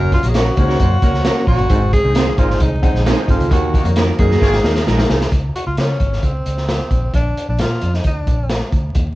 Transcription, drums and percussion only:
0.12 kick medium
0.12 closed hi-hat medium
0.23 closed hi-hat medium
0.34 snare loud
0.34 closed hi-hat medium
0.57 kick medium
0.57 closed hi-hat medium
0.70 snare soft
0.80 kick medium
0.80 closed hi-hat medium
1.02 kick medium
1.02 closed hi-hat medium
1.14 snare soft
1.25 snare loud
1.25 closed hi-hat medium
1.47 kick medium
1.47 open hi-hat soft
1.59 closed hi-hat medium
1.70 kick loud
1.70 closed hi-hat medium
1.93 kick medium
1.93 closed hi-hat medium
2.15 snare loud
2.15 closed hi-hat medium
2.38 kick medium
2.38 closed hi-hat medium
2.51 snare soft
2.60 kick medium
2.60 closed hi-hat medium
2.83 kick medium
2.83 closed hi-hat medium
2.95 snare soft
3.07 snare loud
3.07 closed hi-hat loud
3.28 kick medium
3.28 closed hi-hat medium
3.40 closed hi-hat medium
3.51 kick loud
3.51 closed hi-hat medium
3.74 kick medium
3.74 closed hi-hat medium
3.85 closed hi-hat medium
3.96 snare loud
3.96 closed hi-hat medium
4.18 kick medium
4.18 closed hi-hat medium
4.31 snare soft
4.42 kick medium
4.42 snare medium
4.53 snare medium
4.64 snare medium
4.76 snare medium
4.87 snare medium
4.99 snare medium
5.10 snare loud
5.21 snare medium
5.32 kick loud
5.32 closed hi-hat medium
5.56 closed hi-hat medium
5.77 snare loud
5.77 closed hi-hat medium
6.00 kick medium
6.00 closed hi-hat medium
6.13 snare soft
6.23 kick medium
6.23 closed hi-hat medium
6.46 closed hi-hat medium
6.58 snare soft
6.69 snare loud
6.69 closed hi-hat medium
6.91 kick medium
6.91 closed hi-hat medium
7.14 kick loud
7.14 closed hi-hat medium
7.37 closed hi-hat medium
7.58 snare loud
7.58 closed hi-hat medium
7.81 closed hi-hat medium
7.94 snare soft
8.04 kick medium
8.04 closed hi-hat medium
8.27 kick medium
8.27 closed hi-hat medium
8.50 snare loud
8.50 closed hi-hat medium
8.72 kick medium
8.72 closed hi-hat medium
8.95 kick loud
8.95 closed hi-hat medium

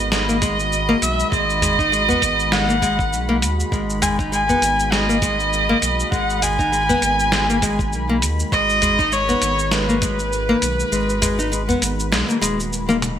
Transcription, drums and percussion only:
0.12 snare medium
0.12 cabasa soft
0.29 cabasa soft
0.42 kick loud
0.42 closed hi-hat medium
0.42 cabasa medium
0.59 cabasa soft
0.72 cabasa soft
1.02 closed hi-hat medium
1.02 cabasa medium
1.20 cabasa soft
1.32 kick loud
1.32 cabasa soft
1.50 cabasa soft
1.62 closed hi-hat medium
1.62 udu loud
1.62 cabasa medium
1.79 kick loud
1.79 cabasa soft
1.93 cabasa soft
2.10 udu loud
2.10 cabasa soft
2.22 kick medium
2.22 closed hi-hat medium
2.22 cabasa medium
2.40 cabasa soft
2.52 snare medium
2.52 cabasa soft
2.70 cabasa soft
2.82 kick medium
2.82 closed hi-hat medium
2.82 cabasa medium
2.99 kick loud
2.99 cabasa soft
3.13 cabasa soft
3.42 closed hi-hat medium
3.42 cabasa medium
3.60 cabasa soft
3.72 kick loud
3.72 cabasa soft
3.90 cabasa soft
4.02 closed hi-hat medium
4.02 udu loud
4.02 cabasa medium
4.19 kick loud
4.19 cabasa soft
4.33 cabasa soft
4.49 udu medium
4.49 cabasa soft
4.62 closed hi-hat medium
4.62 cabasa medium
4.80 cabasa soft
4.92 snare medium
4.92 cabasa soft
5.10 cabasa soft
5.22 kick loud
5.22 closed hi-hat medium
5.22 cabasa medium
5.40 cabasa soft
5.53 cabasa soft
5.82 closed hi-hat medium
5.82 cabasa medium
6.00 cabasa soft
6.12 kick loud
6.12 cabasa soft
6.30 cabasa soft
6.42 closed hi-hat medium
6.42 udu medium
6.42 cabasa medium
6.59 kick loud
6.59 cabasa soft
6.73 cabasa soft
6.89 udu medium
6.89 cabasa soft
7.02 closed hi-hat medium
7.02 cabasa medium
7.19 cabasa soft
7.32 snare medium
7.32 cabasa soft
7.50 cabasa soft
7.62 kick medium
7.62 closed hi-hat medium
7.62 cabasa medium
7.79 kick loud
7.79 cabasa soft
7.93 cabasa soft
8.22 closed hi-hat medium
8.22 cabasa medium
8.40 cabasa soft
8.52 kick loud
8.52 cabasa soft
8.69 cabasa soft
8.82 closed hi-hat loud
8.82 udu loud
8.82 cabasa medium
8.99 kick medium
8.99 cabasa soft
9.12 cabasa soft
9.29 udu medium
9.29 cabasa soft
9.42 closed hi-hat medium
9.42 cabasa medium
9.59 cabasa soft
9.72 snare medium
9.72 cabasa soft
9.89 cabasa soft
10.02 kick loud
10.02 closed hi-hat loud
10.02 cabasa medium
10.19 cabasa soft
10.33 cabasa soft
10.62 closed hi-hat medium
10.62 cabasa medium
10.80 cabasa soft
10.92 cabasa soft
11.09 cabasa soft
11.22 closed hi-hat loud
11.22 udu medium
11.22 cabasa medium
11.39 cabasa soft
11.53 cabasa soft
11.69 udu medium
11.69 cabasa soft
11.82 closed hi-hat medium
11.82 cabasa medium
12.00 cabasa soft
12.12 snare medium
12.12 cabasa soft
12.30 cabasa soft
12.42 closed hi-hat medium
12.42 cabasa medium
12.60 cabasa soft
12.73 cabasa soft
12.89 high tom medium
12.89 cabasa soft
13.02 closed hi-hat medium
13.02 mid tom medium
13.02 cabasa medium

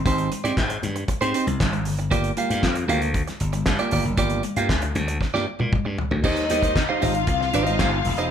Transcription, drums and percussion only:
0.05 kick loud
0.05 closed hi-hat medium
0.05 muted conga soft
0.05 low conga medium
0.18 closed hi-hat soft
0.31 closed hi-hat medium
0.31 high conga medium
0.45 closed hi-hat soft
0.57 kick loud
0.57 snare medium
0.57 clap medium
0.70 closed hi-hat medium
0.83 closed hi-hat medium
0.83 high conga medium
0.83 low conga medium
0.96 closed hi-hat soft
1.08 kick medium
1.08 closed hi-hat medium
1.08 muted conga soft
1.22 closed hi-hat soft
1.34 closed hi-hat medium
1.47 closed hi-hat soft
1.47 high conga medium
1.60 kick loud
1.60 snare loud
1.60 clap medium
1.60 muted conga soft
1.60 high conga medium
1.73 closed hi-hat soft
1.85 open hi-hat medium
1.85 low conga medium
1.99 closed hi-hat soft
2.11 kick loud
2.11 closed hi-hat medium
2.11 low conga medium
2.24 closed hi-hat soft
2.24 muted conga soft
2.37 closed hi-hat medium
2.37 high conga medium
2.51 closed hi-hat medium
2.63 kick medium
2.63 snare medium
2.63 clap medium
2.63 muted conga soft
2.75 closed hi-hat soft
2.75 muted conga soft
2.89 closed hi-hat medium
2.89 high conga medium
2.89 low conga medium
3.02 closed hi-hat soft
3.14 kick medium
3.14 closed hi-hat medium
3.27 snare soft
3.27 closed hi-hat soft
3.27 muted conga soft
3.40 closed hi-hat medium
3.53 closed hi-hat soft
3.53 high conga medium
3.66 kick loud
3.66 snare loud
3.66 clap medium
3.66 muted conga soft
3.66 high conga medium
3.79 closed hi-hat soft
3.79 muted conga soft
3.91 open hi-hat medium
3.91 low conga medium
4.05 closed hi-hat soft
4.17 kick loud
4.17 closed hi-hat medium
4.17 low conga medium
4.30 closed hi-hat soft
4.30 high conga soft
4.43 closed hi-hat medium
4.43 high conga medium
4.56 closed hi-hat medium
4.69 kick medium
4.69 snare medium
4.69 clap medium
4.82 closed hi-hat soft
4.82 muted conga soft
4.95 closed hi-hat medium
4.95 high conga medium
4.95 low conga medium
5.08 closed hi-hat soft
5.21 kick medium
5.21 snare medium
5.21 muted conga soft
5.34 snare soft
5.34 muted conga soft
5.59 high tom medium
5.59 high conga medium
5.72 kick loud
5.72 mid tom medium
5.72 high conga medium
5.98 floor tom medium
5.98 low conga medium
6.11 floor tom medium
6.24 kick loud
6.24 crash medium
6.24 low conga medium
6.37 closed hi-hat soft
6.37 high conga soft
6.50 closed hi-hat medium
6.50 high conga medium
6.63 kick medium
6.63 closed hi-hat medium
6.76 kick medium
6.76 snare medium
6.76 clap medium
6.89 muted conga soft
7.02 open hi-hat medium
7.02 high conga medium
7.02 low conga medium
7.15 closed hi-hat soft
7.27 kick medium
7.27 closed hi-hat medium
7.41 snare soft
7.53 closed hi-hat medium
7.66 closed hi-hat soft
7.66 high conga medium
7.79 kick loud
7.79 snare loud
7.79 clap loud
7.79 high conga medium
7.92 muted conga soft
8.05 open hi-hat medium
8.05 low conga medium
8.18 closed hi-hat soft

